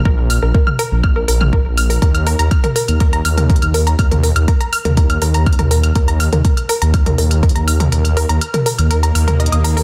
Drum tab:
HH |----o-------o-------o-------o-o-|x-x-o-x-x-x-o-x-x-x-o-x-xxx-o-x-|x-x-o-x-x-x-o-x-x-x-o-x-xxx-o-x-|x-x-o-x-x-x-o-x-x-x-o-x-xxx-o-x-|
T2 |----------o-----------o---------|----------o-----------o---------|--o-----------o-----------o-----|------o-----------o-----------o-|
BD |o-------o-------o-------o-------|o-------o-------o-------o-------|o-------o-------o-------o-------|o-------o-------o-------o-------|

HH |x-x-o-x-x-x-o-x-x-x-o-x-xxx-o-o-|
T2 |----------o-----------o---------|
BD |--------------------------------|